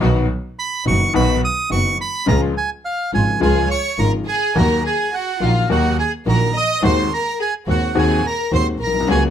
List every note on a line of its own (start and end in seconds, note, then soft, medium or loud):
0.01 0.25 B1 loud
0.01 0.25 B2 medium
0.01 0.25 D#3 medium
0.01 0.25 F#3 medium
0.01 0.25 B3 medium
0.01 0.25 D#4 medium
0.01 0.25 F#4 medium
0.59 0.85 B5 loud
0.85 1.10 F#1 medium
0.85 1.10 F#2 medium
0.85 1.09 D#3 medium
0.85 1.10 F#3 soft
0.85 1.10 B3 soft
0.85 1.10 B3 medium
0.85 1.10 D#4 medium
0.85 1.10 F#4 medium
0.85 1.13 C#6 loud
1.14 1.38 B1 loud
1.14 1.38 B2 loud
1.14 1.38 D#3 medium
1.14 1.38 F#3 medium
1.14 1.38 B3 medium
1.14 1.38 D#4 medium
1.14 1.38 F#4 loud
1.14 1.38 F#4 medium
1.14 1.41 B5 loud
1.45 1.70 D#6 loud
1.70 1.94 F#1 medium
1.70 1.95 F#1 medium
1.70 1.94 F#2 medium
1.70 1.94 D#3 soft
1.70 1.94 F#3 soft
1.70 1.94 B3 soft
1.70 1.95 B3 medium
1.70 1.95 D#4 medium
1.70 1.94 F#4 medium
1.70 1.95 F#4 medium
1.70 1.98 C#6 loud
2.01 2.27 B5 loud
2.26 2.51 C#2 medium
2.26 2.52 C#2 medium
2.26 2.51 C#3 medium
2.26 2.51 F3 medium
2.26 2.51 G#3 medium
2.26 2.52 G#3 medium
2.26 2.52 C#4 medium
2.26 2.51 F4 medium
2.26 2.52 F4 medium
2.26 2.41 A#5 loud
2.58 2.70 G#5 medium
2.85 3.11 F5 medium
3.13 3.37 G#1 medium
3.13 3.37 G#2 medium
3.13 3.37 C#3 soft
3.13 3.37 F3 soft
3.13 3.37 G#3 soft
3.13 3.37 G#3 medium
3.13 3.37 C#4 medium
3.13 3.37 F4 medium
3.13 3.40 G#5 medium
3.40 3.65 C#2 medium
3.40 3.65 C#2 loud
3.40 3.65 C#3 medium
3.40 3.65 F3 medium
3.40 3.65 G#3 medium
3.40 3.65 C#4 medium
3.40 3.65 F4 medium
3.40 3.66 F4 loud
3.40 3.68 G#4 medium
3.40 3.69 G#5 medium
3.69 3.96 C#5 medium
3.69 4.00 C#6 loud
3.98 4.23 G#1 medium
3.98 4.23 G#2 medium
3.98 4.22 C#3 soft
3.98 4.23 F3 soft
3.98 4.23 G#3 soft
3.98 4.23 C#4 soft
3.98 4.23 F4 medium
3.98 4.12 A#4 medium
3.98 4.12 A#5 loud
4.28 4.54 G#4 medium
4.28 4.57 G#5 loud
4.55 4.80 D#2 medium
4.55 4.80 D#3 medium
4.55 4.80 F#3 medium
4.55 4.80 A#3 medium
4.55 4.80 D#4 medium
4.55 4.80 F#4 medium
4.55 4.83 A#4 medium
4.55 4.84 A#5 loud
4.86 5.12 G#4 medium
4.86 5.15 G#5 medium
5.14 5.40 F#4 medium
5.14 5.43 F#5 loud
5.40 5.65 A#1 medium
5.40 5.65 A#2 medium
5.40 5.65 D#3 soft
5.40 5.65 F#3 soft
5.40 5.65 A#3 soft
5.40 5.65 A#3 medium
5.40 5.65 D#4 medium
5.40 5.68 F4 medium
5.40 5.65 F#4 medium
5.40 5.66 F#4 medium
5.40 5.69 F5 medium
5.69 5.94 D#2 loud
5.69 5.94 D#2 medium
5.69 5.94 D#3 medium
5.69 5.94 F#3 medium
5.69 5.93 A#3 medium
5.69 5.94 A#3 medium
5.69 5.94 D#4 medium
5.69 5.94 F#4 medium
5.69 5.97 F#4 medium
5.69 5.97 F#5 medium
5.99 6.11 G#4 medium
5.99 6.12 G#5 medium
6.26 6.50 A#1 medium
6.26 6.50 A#2 medium
6.26 6.50 D#3 medium
6.26 6.50 F#3 soft
6.26 6.50 A#3 medium
6.26 6.50 A#3 soft
6.26 6.50 D#4 soft
6.26 6.50 F#4 medium
6.26 6.53 A#4 medium
6.26 6.57 A#5 medium
6.56 6.82 D#5 loud
6.56 6.82 D#6 loud
6.82 7.06 D#2 medium
6.82 7.07 D#2 medium
6.82 7.06 D#3 medium
6.82 7.07 G#3 medium
6.82 7.07 C4 medium
6.82 7.07 F#4 medium
6.82 7.10 C5 medium
6.82 7.13 C6 loud
7.12 7.38 A#4 medium
7.12 7.39 A#5 medium
7.40 7.53 G#4 medium
7.40 7.54 G#5 medium
7.67 7.91 D#2 medium
7.67 7.91 D#3 medium
7.67 7.91 G#3 medium
7.67 7.91 G#3 soft
7.67 7.91 C4 medium
7.67 7.91 C4 soft
7.67 7.91 F#4 medium
7.67 7.94 F#4 medium
7.67 7.98 F#5 medium
7.95 8.19 D#2 loud
7.95 8.20 D#2 medium
7.95 8.19 D#3 loud
7.95 8.19 G#3 medium
7.95 8.19 C4 medium
7.95 8.19 F#4 medium
7.95 8.19 F#4 loud
7.95 8.22 G#4 medium
7.95 8.26 G#5 medium
8.25 8.51 A#4 medium
8.25 8.52 A#5 loud
8.51 8.76 D#2 medium
8.51 8.76 D#3 medium
8.51 8.75 G#3 medium
8.51 8.76 G#3 medium
8.51 8.76 C4 soft
8.51 8.76 F#4 medium
8.51 8.66 C5 medium
8.51 8.67 C6 medium
8.81 9.08 B1 medium
8.81 9.07 A#4 medium
8.81 9.08 A#5 medium
8.87 8.94 A#1 soft
8.94 9.01 B1 medium
9.00 9.08 C2 medium
9.07 9.30 C#2 medium
9.07 9.30 C#2 loud
9.07 9.30 C#3 medium
9.07 9.30 F#3 medium
9.07 9.30 A#3 medium
9.07 9.30 C#4 medium
9.07 9.30 F#4 medium
9.07 9.22 G#4 medium
9.07 9.23 G#5 medium